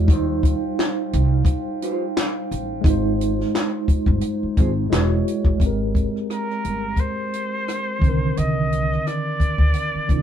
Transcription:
Already playing: tine electric piano E4 C#5
0.05 tine electric piano G3 D#4, kick
0.09 upright bass D#2, glass harmonica D#4 C5 F5 G5, tine electric piano F4, closed hi-hat
0.13 tine electric piano C5
0.43 kick, closed hi-hat
0.79 snare, clap, closed hi-hat
1.13 upright bass C2, closed hi-hat
1.45 muted clean electric guitar stroke, kick, closed hi-hat
1.82 clean electric guitar F4 G4 C5, closed hi-hat
2.17 snare, clap, closed hi-hat
2.51 upright bass A1, closed hi-hat
2.81 upright bass G#1, tine electric piano G#3 D#4, glass harmonica G#3 F4, kick
2.85 glass harmonica D#4, tine electric piano F4, closed hi-hat
2.90 tine electric piano C5
3.21 closed hi-hat
3.40 snare
3.55 snare, clap, closed hi-hat
3.88 muted upright bass stroke, kick, closed hi-hat
4.06 upright bass G1, kick
4.21 closed hi-hat
4.43 muted upright bass stroke
4.57 upright bass G#1, clean electric guitar F4 G#4 C5, kick, closed hi-hat
4.90 upright bass E1, tine electric piano G#3 E4 F#4, glass harmonica E4 G#4 C#5, snare, clap, closed hi-hat
4.95 tine electric piano B4
5.01 tine electric piano C#5
5.28 closed hi-hat
5.45 upright bass A1, kick
5.57 upright bass G#1, tine electric piano G#3 C4, kick, closed hi-hat
5.64 tine electric piano G4 A#4
5.95 kick, closed hi-hat
6.16 cross-stick
6.30 muted trumpet A#4, cross-stick, closed hi-hat
6.50 cross-stick
6.65 upright bass G1, closed hi-hat
6.96 muted trumpet C5, kick, closed hi-hat
7.34 closed hi-hat
7.68 cross-stick, closed hi-hat
7.99 upright bass C2, tine electric piano D#3 C4, kick
8.04 tine electric piano D3, closed hi-hat
8.08 tine electric piano A#4
8.37 upright bass C2, muted trumpet D#5, closed hi-hat
8.72 closed hi-hat
8.92 cross-stick
9.07 muted trumpet D5, cross-stick, closed hi-hat
9.40 muted upright bass stroke, kick, closed hi-hat
9.58 upright bass D2, kick
9.74 closed hi-hat
9.95 muted upright bass stroke
10.08 upright bass C2, tine electric piano D#3 C4 D4, kick, closed hi-hat
10.12 tine electric piano E4
10.18 tine electric piano F4

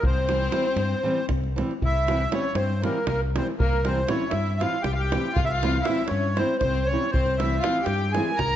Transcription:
0.03 fingered electric bass C2, violin C4, accordion C5, davul low
0.16 davul high
0.29 nylon-string guitar E3 G3 C4 E4, davul high
0.41 davul high
0.51 nylon-string guitar E3 G3 C4 E4, davul high
0.65 davul high
0.76 fingered electric bass G2, davul high
0.91 davul high
1.03 nylon-string guitar E3 G3 C4 E4
1.18 davul high
1.29 fingered electric bass C2, davul high, davul low
1.44 davul high
1.56 nylon-string guitar E3 G3 C4 E4, davul high
1.71 davul high
1.82 fingered electric bass C2, violin E4, accordion E5, davul low
1.97 davul high
2.08 nylon-string guitar E3 G3 C4 E4, davul high
2.32 nylon-string guitar E3 G3 C4 E4, violin C#4, accordion C#5, davul high
2.54 fingered electric bass G2, violin C4, accordion C5, davul high
2.70 davul high
2.82 nylon-string guitar E3 G3 C4 E4, violin A#3, accordion A#4, davul high
2.95 davul high
3.07 fingered electric bass C2, violin A#3, accordion A#4, davul high, davul low
3.22 davul high
3.36 nylon-string guitar E3 G3 C4 E4, violin C4, accordion C5, davul high
3.58 fingered electric bass C2, violin A#3, accordion A#4, davul low
3.73 davul high
3.84 nylon-string guitar E3 G3 C4 E4, violin C4, accordion C5, davul high
3.98 davul high
4.07 nylon-string guitar E3 G3 C4 E4, violin C#4, accordion C#5, davul high
4.29 fingered electric bass G2, violin E4, accordion E5, davul high
4.46 davul high
4.60 nylon-string guitar E3 G3 C4 E4, violin F4, accordion F5, davul high
4.73 davul high
4.82 fingered electric bass C2, violin G4, accordion G5, davul high, davul low
4.93 violin F4 G4, accordion F5
4.99 accordion G5, davul high
5.12 nylon-string guitar E3 G3 C4 E4, davul high
5.33 fingered electric bass C2, violin F4, accordion F5, davul low
5.45 violin E4, accordion E5 F5
5.50 violin F4, davul high
5.62 nylon-string guitar E3 G3 C4 E4, davul high
5.74 davul high
5.82 violin E4, accordion E5, davul high
5.88 nylon-string guitar E3 G3 C4 E4
6.06 violin C#4, accordion C#5, davul high
6.11 fingered electric bass G2
6.23 davul high
6.35 nylon-string guitar E3 G3, violin C4, accordion C5, davul high
6.39 nylon-string guitar C4 E4
6.49 davul high
6.58 violin C4, accordion C5, davul high, davul low
6.64 fingered electric bass C2
6.75 davul high
6.86 violin C#4, accordion C#5
6.91 nylon-string guitar E3 G3 C4 E4
7.11 fingered electric bass C2, violin C4, accordion C5, davul low
7.26 davul high
7.38 nylon-string guitar E3, violin E4, accordion E5, davul high
7.43 nylon-string guitar G3 C4 E4
7.52 davul high
7.59 violin F4, accordion F5
7.64 nylon-string guitar E3 G3 C4 E4, davul high
7.75 davul high
7.81 violin G4, accordion G5
7.86 fingered electric bass G2, davul high
8.01 davul high
8.11 violin G#4, accordion G#5, davul high
8.15 nylon-string guitar E3 G3 C4 E4
8.27 davul high
8.32 violin A#4
8.37 fingered electric bass C2, accordion A#5, davul high, davul low

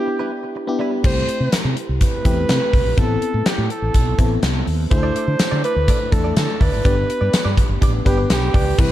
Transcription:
Already playing: fm electric piano B3 D4 E4 G4, flugelhorn G4
0.07 muted clean electric guitar stroke
0.19 clean electric guitar G3 D4 E4 B4
0.32 muted clean electric guitar stroke
0.43 muted clean electric guitar stroke
0.56 muted clean electric guitar stroke
0.67 fm electric piano B3 D4 E4 G4, muted clean electric guitar stroke
0.79 clean electric guitar G3 D4 E4 B4
0.92 muted clean electric guitar stroke
1.04 fretless electric bass C2, fm electric piano A3 C4 E4 G4, flugelhorn C5, kick, crash
1.29 closed hi-hat
1.40 fretless electric bass C3
1.52 muted fretless electric bass stroke, snare, closed hi-hat
1.65 fretless electric bass C3
1.77 closed hi-hat
1.89 fretless electric bass C2
2.01 flugelhorn B4, kick, closed hi-hat
2.25 fretless electric bass E2, fm electric piano A3 C4 E4 G4, kick, closed hi-hat
2.49 fretless electric bass C3, snare, closed hi-hat
2.73 fretless electric bass C2, kick, open hi-hat
2.85 fretless electric bass A#1
2.97 fretless electric bass A1, fm electric piano B3 C4 E4 A4, flugelhorn A4, kick, closed hi-hat
3.22 closed hi-hat
3.34 fretless electric bass A2
3.46 flugelhorn G4, muted fretless electric bass stroke, snare, closed hi-hat
3.58 fretless electric bass A2
3.70 flugelhorn A4, closed hi-hat
3.82 fretless electric bass A1
3.94 fretless electric bass B1, kick, closed hi-hat
4.18 fretless electric bass A1, fm electric piano B3 C4 E4 A4, kick, closed hi-hat
4.43 fretless electric bass C2, snare, closed hi-hat
4.67 fretless electric bass D#2, open hi-hat
4.91 fretless electric bass D2, fm electric piano A3 D4 E4 G#4, flugelhorn C5, muted clean electric guitar stroke, kick, closed hi-hat
4.98 fm electric piano A4
5.03 clean electric guitar A3 E4 A4 D5
5.15 clean electric guitar A3 E4 A4 D5, closed hi-hat
5.27 fretless electric bass D3, muted clean electric guitar stroke
5.39 muted clean electric guitar stroke, muted fretless electric bass stroke, snare, closed hi-hat, tambourine
5.51 fretless electric bass D3, clean electric guitar A3 E4 A4 D5
5.63 clean electric guitar A3 E4 A4 D5, flugelhorn B4, closed hi-hat
5.76 fretless electric bass D2, muted clean electric guitar stroke
5.88 clean electric guitar A3 E4 A4 D5, kick, closed hi-hat
6.00 muted clean electric guitar stroke
6.11 fretless electric bass E2, fm electric piano A3 D4 E4 A4, flugelhorn A4, muted clean electric guitar stroke, kick, closed hi-hat
6.24 clean electric guitar A3 E4 A4 D5
6.36 fretless electric bass D3, flugelhorn A4, muted clean electric guitar stroke, snare, closed hi-hat, tambourine
6.48 muted clean electric guitar stroke
6.60 fretless electric bass D2, clean electric guitar A3 E4 A4 D5, flugelhorn B4, kick, open hi-hat
6.72 fretless electric bass G#1, clean electric guitar A3 E4 A4 D5
6.84 fretless electric bass G1, fm electric piano B3 D4 G4 B4, clean electric guitar D4 G4 B4 D5, kick, closed hi-hat
6.96 muted clean electric guitar stroke
7.09 muted clean electric guitar stroke, closed hi-hat
7.21 fretless electric bass G2, clean electric guitar D4 G4 B4 D5
7.33 muted clean electric guitar stroke, muted fretless electric bass stroke, snare, closed hi-hat, tambourine
7.45 fretless electric bass G2, clean electric guitar D4 G4 B4 D5
7.57 muted clean electric guitar stroke, kick, closed hi-hat
7.69 fretless electric bass G1, muted clean electric guitar stroke
7.81 fretless electric bass A1, clean electric guitar D4 G4 B4 D5, kick, closed hi-hat
7.94 muted clean electric guitar stroke
8.05 fretless electric bass G1, fm electric piano B3 D4 G4 B4, flugelhorn G4, muted clean electric guitar stroke, kick, closed hi-hat
8.18 clean electric guitar D4 G4 B4 D5
8.30 fretless electric bass B1, flugelhorn G4, snare, closed hi-hat, tambourine
8.42 muted clean electric guitar stroke
8.53 fretless electric bass C#2, clean electric guitar D4 G4 B4 D5, kick, open hi-hat
8.66 muted clean electric guitar stroke
8.78 fretless electric bass C2, fm electric piano E3 G3 C4 E4 G4, flugelhorn B4, muted clean electric guitar stroke, kick, crash

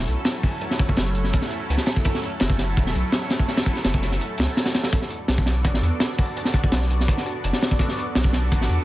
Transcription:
Already playing: analog synth pad F#3 A3 C#4 E4 A4
0.07 sub bass B1, closed hi-hat
0.25 snare, closed hi-hat
0.43 kick, open hi-hat
0.61 closed hi-hat
0.71 snare
0.79 kick, closed hi-hat
0.89 analog synth pad F#3 A3 C#4 E4 A4, kick
0.97 sub bass F#1, snare, closed hi-hat
1.06 snare
1.15 closed hi-hat
1.24 snare
1.33 kick, closed hi-hat
1.42 snare
1.51 closed hi-hat
1.69 sub bass C#2, closed hi-hat
1.78 snare
1.86 snare, closed hi-hat
1.96 kick
2.04 kick, closed hi-hat
2.15 snare
2.23 closed hi-hat
2.33 analog synth pad F#3 A3 C#4 E4 A4
2.40 sub bass F#1, snare, closed hi-hat
2.50 kick
2.58 snare, closed hi-hat
2.77 sub bass E1, kick, closed hi-hat
2.87 snare
2.95 sub bass B1, closed hi-hat
3.12 snare, closed hi-hat
3.30 snare, closed hi-hat
3.39 kick
3.48 snare, closed hi-hat
3.57 snare, closed hi-hat
3.66 kick
3.75 analog synth pad F#3 A3 C#4 E4 A4, snare, closed hi-hat
3.84 sub bass F#1, snare, closed hi-hat
3.94 kick
4.02 snare, closed hi-hat
4.12 snare
4.21 closed hi-hat
4.38 sub bass C#2, snare, closed hi-hat
4.57 snare, closed hi-hat
4.65 snare, closed hi-hat
4.74 snare, closed hi-hat
4.84 snare, closed hi-hat
4.93 kick, closed hi-hat
5.02 snare
5.10 closed hi-hat
5.19 analog synth pad B3 D4 F#4 A4 D5
5.28 sub bass B1, snare, closed hi-hat
5.38 kick
5.46 snare, closed hi-hat
5.64 sub bass A1, kick, closed hi-hat
5.74 snare
5.82 sub bass E2, closed hi-hat
6.00 snare, closed hi-hat
6.18 kick, open hi-hat
6.37 closed hi-hat
6.45 snare
6.54 kick, closed hi-hat
6.63 analog synth pad B3 D4 F#4 A4 D5, kick
6.72 sub bass B1, snare, closed hi-hat
6.82 snare
6.90 closed hi-hat
7.00 snare
7.08 kick, closed hi-hat
7.18 snare
7.26 closed hi-hat
7.44 sub bass F#1, closed hi-hat
7.53 snare
7.62 snare, closed hi-hat
7.71 kick
7.79 kick, closed hi-hat
7.89 snare
7.98 closed hi-hat
8.07 analog synth pad B3 D4 F#4 A4 D5
8.15 sub bass B1, snare, closed hi-hat
8.24 kick
8.33 snare, closed hi-hat
8.52 sub bass A1, kick, closed hi-hat
8.61 snare
8.69 sub bass E2, closed hi-hat

